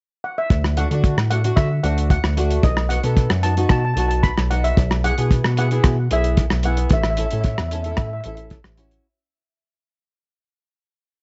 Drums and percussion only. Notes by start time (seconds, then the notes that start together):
0.50 kick, closed hi-hat
0.64 cross-stick
0.77 closed hi-hat
0.91 closed hi-hat
1.04 kick, closed hi-hat
1.18 cross-stick
1.31 closed hi-hat
1.44 closed hi-hat
1.57 kick, cross-stick, closed hi-hat
1.84 closed hi-hat
1.98 closed hi-hat
2.10 kick, closed hi-hat
2.24 cross-stick
2.37 closed hi-hat
2.51 closed hi-hat
2.63 kick, closed hi-hat
2.77 cross-stick
2.90 closed hi-hat
3.03 closed hi-hat
3.17 kick, closed hi-hat
3.30 cross-stick
3.43 closed hi-hat
3.57 closed hi-hat
3.69 kick, cross-stick, closed hi-hat
3.97 closed hi-hat
4.11 closed hi-hat
4.23 kick, closed hi-hat
4.38 cross-stick
4.51 closed hi-hat
4.64 closed hi-hat
4.77 kick, closed hi-hat
4.91 cross-stick
5.04 closed hi-hat
5.18 closed hi-hat
5.31 kick, closed hi-hat
5.44 cross-stick
5.57 closed hi-hat
5.71 closed hi-hat
5.84 kick, cross-stick, closed hi-hat
6.11 closed hi-hat
6.24 closed hi-hat
6.37 kick, closed hi-hat
6.50 cross-stick
6.63 closed hi-hat
6.77 closed hi-hat
6.90 kick, closed hi-hat
7.04 cross-stick
7.17 closed hi-hat
7.31 closed hi-hat
7.44 kick, closed hi-hat
7.58 cross-stick
7.71 closed hi-hat
7.84 closed hi-hat
7.97 kick, cross-stick, closed hi-hat
8.24 closed hi-hat
8.37 closed hi-hat
8.50 kick, closed hi-hat
8.64 cross-stick
8.78 closed hi-hat
8.91 closed hi-hat